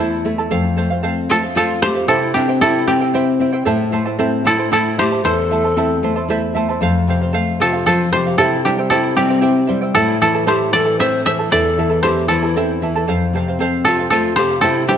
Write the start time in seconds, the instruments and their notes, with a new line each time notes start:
Already playing: nylon-string guitar E2, pan flute E4, koto A4 C5 D5 E5, charango C5 E5
0.00 charango E4 A4 A5, nylon-string guitar E4
0.25 nylon-string guitar A3, charango E4 A4 E5 A5
0.38 charango E4 A4 A5
0.50 nylon-string guitar F2, charango A4 C5 F5
0.77 nylon-string guitar A3, charango A4 C5 F5
0.90 charango C5 F5
1.03 nylon-string guitar C4, charango A4 C5 F5
1.30 nylon-string guitar A3, pan flute F4, charango A4 C5 F5, koto A4
1.42 charango C5 F5
1.56 pan flute F4, nylon-string guitar F4, charango A4 C5 F5, koto A4
1.82 nylon-string guitar A3, pan flute G4, charango A4 C5 F5, koto C5
1.95 charango C5 F5
2.08 nylon-string guitar C3, charango E4 G4 C5 E5 G5, pan flute E4, koto A4
2.34 nylon-string guitar C4, pan flute D4, charango E4 C5 E5 G5, koto G4
2.49 charango E4 C5 G5
2.61 nylon-string guitar E4, pan flute E4, charango E4 G4 C5 E5 G5, koto A4
2.87 nylon-string guitar C4, pan flute C4, charango E4 C5 E5 G5, koto G4
3.01 charango E4 C5 G5
3.14 nylon-string guitar E4, charango E4 G4 C5 E5 G5
3.39 nylon-string guitar C4, charango E4 C5 E5 G5
3.53 charango E4 C5 G5
3.65 nylon-string guitar A2, charango E4 A4 C5 E5 A5
3.92 nylon-string guitar A3, charango E4 C5 E5 A5
4.06 charango E4 C5 A5
4.19 nylon-string guitar C4, charango E4 A4 C5 E5 A5
4.44 nylon-string guitar A3, charango E4 C5 E5 A5, pan flute E4, koto A4
4.58 charango E4 C5 A5
4.71 nylon-string guitar E4, charango E4 A4 C5 E5 A5, pan flute E4, koto A4
4.98 nylon-string guitar A3, charango E4 C5 E5 A5, pan flute G4, koto C5
5.12 charango E4 C5 A5
5.24 nylon-string guitar E2, charango E4 A4 C5 E5 A5, pan flute A4, koto C5
5.51 nylon-string guitar A3, charango E4 C5 E5 A5
5.64 charango E4 C5 A5
5.77 nylon-string guitar C4, charango E4 A4 C5 E5 A5
6.03 nylon-string guitar A3, charango E4 C5 E5 A5
6.16 charango E4 C5 A5
6.28 nylon-string guitar E4, charango E4 A4 C5 E5 A5
6.55 nylon-string guitar A3, charango E4 C5 E5 A5
6.69 charango E4 C5 A5
6.81 nylon-string guitar F2, charango A4 C5 F5
7.07 nylon-string guitar C3, charango A4 C5 F5
7.21 charango C5 F5
7.33 nylon-string guitar A3, charango A4 C5 F5
7.60 nylon-string guitar C3, pan flute F4, charango A4 C5 F5, koto A4
7.73 charango C5 F5
7.86 nylon-string guitar F3, pan flute F4, koto A4, charango A4 C5 F5
8.12 nylon-string guitar C3, pan flute G4, charango A4 C5 F5, koto C5
8.26 charango C5 F5
8.38 nylon-string guitar C3, pan flute E4, charango E4 G4 C5 E5 G5, koto A4
8.65 nylon-string guitar G3, pan flute D4, charango E4 C5 E5 G5, koto G4
8.78 charango E4 C5 G5
8.90 pan flute E4, nylon-string guitar E4, charango E4 G4 C5 E5 G5, koto A4
9.16 nylon-string guitar G3, pan flute C4, charango E4 C5 E5 G5, koto G4
9.29 charango E4 C5 G5
9.41 nylon-string guitar C4, charango E4 G4 C5 E5 G5
9.67 nylon-string guitar G3, charango E4 C5 E5 G5
9.81 charango E4 C5 G5
9.95 nylon-string guitar A2, pan flute E4, charango E4 A4 C5 E5 A5, koto A4
10.21 nylon-string guitar E3, pan flute E4, charango E4 A4 E5 A5, koto A4
10.34 charango E4 A4 A5
10.46 charango E4 A4 C5 E5 A5, nylon-string guitar E4, pan flute G4, koto C5
10.73 nylon-string guitar E3, charango E4 A4 E5 A5, pan flute A4, koto D5
10.85 charango E4 A4 A5
10.99 nylon-string guitar C4, charango E4 A4 C5 E5 A5, pan flute C5, koto E5
11.25 nylon-string guitar E3, charango E4 A4 E5 A5, pan flute C5, koto E5
11.39 charango E4 A4 A5
11.51 nylon-string guitar E2, charango E4 A4 C5 E5 A5, pan flute A4, koto D5
11.78 nylon-string guitar E3, charango E4 A4 E5 A5
11.90 charango E4 A4 A5
12.03 charango E4 A4 C5 E5 A5, nylon-string guitar E4, pan flute G4, koto C5
12.28 nylon-string guitar E3, pan flute E4, charango E4 A4 E5 A5, koto A4
12.43 charango E4 A4 A5
12.56 nylon-string guitar C4, charango E4 A4 C5 E5 A5
12.82 nylon-string guitar E3, charango E4 A4 E5 A5
12.96 charango E4 A4 A5
13.07 nylon-string guitar F2, charango A4 C5 F5
13.33 nylon-string guitar C3, charango A4 C5 F5
13.48 charango C5 F5
13.59 nylon-string guitar C4, charango A4 C5 F5
13.85 nylon-string guitar C3, pan flute F4, koto A4, charango A4 C5 F5
13.99 charango C5 F5
14.10 nylon-string guitar A3, pan flute F4, koto A4, charango A4 C5 F5
14.36 nylon-string guitar C3, pan flute G4, charango A4 C5 F5, koto C5
14.51 charango C5 F5
14.61 nylon-string guitar C3, pan flute E4, charango E4 G4 C5 E5 G5, koto A4
14.87 nylon-string guitar G3, pan flute D4, charango E4 C5 E5 G5, koto G4